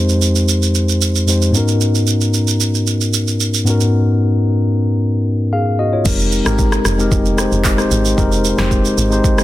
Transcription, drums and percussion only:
0.09 shaker soft
0.22 shaker medium
0.36 shaker medium
0.49 shaker medium
0.63 shaker soft
0.75 shaker medium
0.89 shaker soft
1.02 shaker medium
1.15 shaker medium
1.28 shaker medium
1.42 shaker medium
1.55 shaker medium
1.68 shaker medium
1.81 shaker medium
1.95 shaker soft
2.07 shaker medium
2.21 shaker medium
2.34 shaker medium
2.48 shaker medium
2.60 shaker medium
2.74 shaker soft
2.87 shaker medium
3.01 shaker soft
3.14 shaker loud
3.28 shaker soft
3.40 shaker medium
3.54 shaker medium
3.67 shaker medium
3.80 shaker medium
6.06 kick loud
6.06 crash medium
6.06 shaker medium
6.20 shaker soft
6.32 shaker medium
6.46 cross-stick loud
6.46 shaker medium
6.59 kick medium
6.59 shaker medium
6.72 cross-stick loud
6.72 shaker medium
6.85 cross-stick loud
6.85 shaker medium
6.99 shaker soft
7.12 kick loud
7.12 shaker medium
7.26 shaker soft
7.38 cross-stick loud
7.38 shaker loud
7.52 shaker medium
7.65 kick medium
7.65 clap medium
7.65 shaker medium
7.78 cross-stick medium
7.78 shaker medium
7.91 shaker medium
8.05 shaker medium
8.18 kick loud
8.18 shaker medium
8.32 shaker soft
8.45 shaker medium
8.58 cross-stick loud
8.58 snare medium
8.58 shaker medium
8.71 kick loud
8.71 shaker medium
8.85 shaker medium
8.98 shaker medium
9.12 shaker soft
9.24 kick loud
9.24 shaker medium
9.38 cross-stick medium
9.38 shaker medium

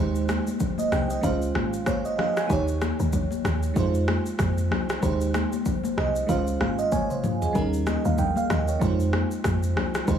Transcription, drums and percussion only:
0.15 shaker medium
0.29 cross-stick loud
0.29 high conga medium
0.29 shaker soft
0.47 high conga medium
0.47 shaker medium
0.60 kick medium
0.60 low conga medium
0.60 shaker medium
0.78 high conga medium
0.78 shaker medium
0.92 cross-stick medium
0.92 high conga medium
0.92 low conga medium
0.92 shaker soft
1.10 shaker medium
1.23 kick loud
1.23 shaker medium
1.42 shaker soft
1.55 cross-stick medium
1.55 high conga medium
1.73 shaker medium
1.86 kick loud
1.86 cross-stick medium
1.86 high conga medium
1.86 shaker medium
2.05 shaker soft
2.18 cross-stick medium
2.18 high conga medium
2.18 low conga medium
2.37 cross-stick medium
2.37 shaker soft
2.50 kick loud
2.50 shaker medium
2.68 shaker soft
2.82 cross-stick loud
2.82 high conga medium
2.82 shaker medium
3.00 high conga medium
3.00 shaker medium
3.13 kick medium
3.13 low conga medium
3.13 shaker medium
3.31 high conga medium
3.31 shaker medium
3.44 cross-stick loud
3.44 high conga medium
3.44 low conga medium
3.44 shaker soft
3.63 shaker medium
3.76 kick loud
3.76 shaker medium
3.95 shaker medium
4.08 cross-stick loud
4.08 high conga medium
4.26 shaker medium
4.39 kick loud
4.39 cross-stick medium
4.39 high conga medium
4.39 shaker medium
4.58 shaker medium
4.71 cross-stick medium
4.71 high conga medium
4.71 low conga medium
4.89 cross-stick loud
4.89 shaker soft
5.03 kick loud
5.03 shaker medium
5.21 shaker medium
5.34 cross-stick loud
5.34 high conga medium
5.34 shaker medium
5.53 high conga medium
5.53 shaker medium
5.66 kick medium
5.66 low conga medium
5.66 shaker medium
5.83 high conga medium
5.83 shaker medium
5.97 cross-stick loud
5.97 high conga medium
5.97 low conga medium
6.16 shaker medium
6.29 kick loud
6.29 shaker medium
6.47 shaker soft
6.61 cross-stick medium
6.61 high conga medium
6.79 shaker medium
6.92 kick loud
6.92 high tom medium
6.92 high conga medium
6.92 shaker medium
7.10 mid tom medium
7.10 shaker soft
7.24 mid tom medium
7.24 high conga medium
7.24 low conga medium
7.24 shaker medium
7.42 floor tom medium
7.42 shaker soft
7.55 kick loud
7.55 shaker medium
7.73 shaker soft
7.87 cross-stick loud
7.87 high conga medium
7.87 shaker medium
8.05 high conga medium
8.05 shaker medium
8.18 kick medium
8.18 low conga medium
8.18 shaker medium
8.36 high conga medium
8.36 shaker medium
8.50 cross-stick loud
8.50 high conga medium
8.50 low conga medium
8.50 shaker soft
8.68 shaker medium
8.81 kick loud
8.81 shaker medium
9.00 shaker soft
9.13 cross-stick medium
9.13 high conga medium
9.31 shaker medium
9.44 kick loud
9.44 cross-stick medium
9.44 high conga medium
9.44 shaker medium
9.63 shaker medium
9.76 cross-stick medium
9.76 high conga medium
9.76 low conga medium
9.95 cross-stick medium
9.95 shaker soft
10.08 kick loud
10.08 shaker medium

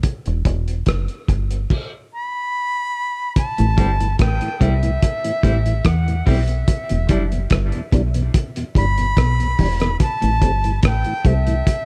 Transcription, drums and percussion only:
0.03 kick loud
0.03 closed hi-hat medium
0.26 closed hi-hat soft
0.45 kick loud
0.45 closed hi-hat medium
0.68 closed hi-hat soft
0.86 kick loud
0.86 cross-stick loud
0.86 closed hi-hat medium
1.08 closed hi-hat soft
1.28 kick medium
1.28 closed hi-hat medium
1.51 closed hi-hat medium
1.70 kick loud
1.70 crash medium
3.36 kick loud
3.36 closed hi-hat medium
3.58 closed hi-hat medium
3.78 kick loud
3.78 closed hi-hat medium
4.00 closed hi-hat soft
4.19 kick loud
4.19 cross-stick loud
4.19 closed hi-hat medium
4.41 closed hi-hat soft
4.61 kick medium
4.61 closed hi-hat medium
4.83 closed hi-hat medium
5.02 kick loud
5.02 closed hi-hat loud
5.24 closed hi-hat medium
5.43 kick medium
5.43 closed hi-hat medium
5.66 closed hi-hat medium
5.85 kick loud
5.85 cross-stick loud
5.85 closed hi-hat medium
6.08 closed hi-hat soft
6.27 kick medium
6.27 open hi-hat medium
6.48 closed hi-hat medium
6.68 kick loud
6.68 closed hi-hat loud
6.89 closed hi-hat medium
7.09 kick loud
7.09 closed hi-hat medium
7.32 closed hi-hat soft
7.50 kick loud
7.50 cross-stick loud
7.50 closed hi-hat medium
7.72 closed hi-hat soft
7.92 kick medium
7.92 closed hi-hat medium
8.14 closed hi-hat medium
8.34 kick loud
8.34 closed hi-hat loud
8.56 closed hi-hat medium
8.75 kick medium
8.75 closed hi-hat medium
8.98 closed hi-hat medium
9.17 kick loud
9.17 cross-stick loud
9.17 closed hi-hat medium
9.40 closed hi-hat soft
9.59 kick medium
9.59 open hi-hat medium
9.80 cross-stick medium
9.80 closed hi-hat medium
10.00 kick loud
10.00 closed hi-hat medium
10.22 closed hi-hat medium
10.42 kick loud
10.42 closed hi-hat medium
10.64 closed hi-hat soft
10.83 kick loud
10.83 cross-stick loud
10.83 closed hi-hat medium
11.04 closed hi-hat soft
11.25 kick loud
11.25 closed hi-hat medium
11.47 closed hi-hat medium
11.67 kick loud
11.67 closed hi-hat loud

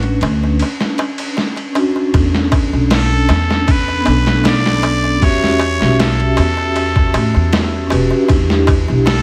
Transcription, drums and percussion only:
0.03 ride soft
0.21 ride medium
0.21 darbuka tek medium
0.44 darbuka tek soft
0.59 ride medium
0.59 darbuka tek medium
0.81 snare soft
0.81 darbuka tek soft
0.98 ride medium
0.98 darbuka tek medium
1.18 ride medium
1.18 darbuka tek soft
1.37 snare soft
1.37 darbuka tek soft
1.56 ride medium
1.56 darbuka tek soft
1.75 ride medium
1.75 darbuka tek medium
1.96 darbuka tek soft
2.14 kick loud
2.14 ride medium
2.14 darbuka tek medium
2.35 snare medium
2.52 kick loud
2.52 ride medium
2.52 darbuka tek medium
2.73 darbuka tek soft
2.90 snare loud
2.90 open hi-hat medium
2.90 darbuka tek medium
3.29 snare soft
3.29 ride medium
3.29 darbuka tek medium
3.50 snare soft
3.50 darbuka tek soft
3.68 kick loud
3.68 ride medium
3.68 darbuka tek medium
3.88 darbuka tek soft
4.06 ride medium
4.06 darbuka tek medium
4.27 snare medium
4.27 darbuka tek soft
4.44 snare loud
4.44 ride medium
4.44 darbuka tek medium
4.66 snare medium
4.83 ride medium
4.83 darbuka tek medium
5.04 darbuka tek soft
5.22 kick loud
5.22 ride medium
5.22 darbuka tek soft
5.44 snare soft
5.59 ride medium
5.59 darbuka tek medium
5.80 snare medium
5.80 darbuka tek soft
5.99 snare loud
5.99 ride medium
5.99 darbuka tek medium
6.20 ride soft
6.37 ride medium
6.37 darbuka tek loud
6.57 darbuka tek soft
6.76 ride medium
6.76 darbuka tek medium
6.96 kick loud
6.96 darbuka tek soft
7.14 ride medium
7.14 darbuka tek loud
7.34 darbuka tek soft
7.53 snare loud
7.53 ride medium
7.53 darbuka tek medium
7.90 ride medium
7.90 darbuka tek medium
8.11 darbuka tek soft
8.28 kick loud
8.28 ride medium
8.28 darbuka tek medium
8.50 snare medium
8.67 kick loud
8.67 ride medium
8.67 darbuka tek medium
8.88 darbuka tek soft
9.06 snare loud
9.06 open hi-hat medium
9.06 darbuka tek medium

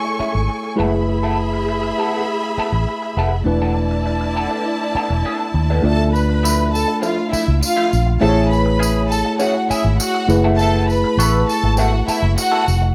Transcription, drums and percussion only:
6.16 tambourine soft
6.45 tambourine medium
6.75 tambourine medium
7.03 tambourine soft
7.33 tambourine soft
7.63 tambourine medium
7.93 tambourine soft
8.53 tambourine soft
8.83 tambourine medium
9.12 tambourine soft
9.40 tambourine soft
9.71 tambourine soft
10.00 tambourine medium
10.29 tambourine soft
10.59 tambourine soft
10.90 tambourine soft
11.20 tambourine medium
11.49 tambourine soft
11.77 tambourine soft
12.08 tambourine soft
12.38 tambourine medium
12.68 tambourine soft

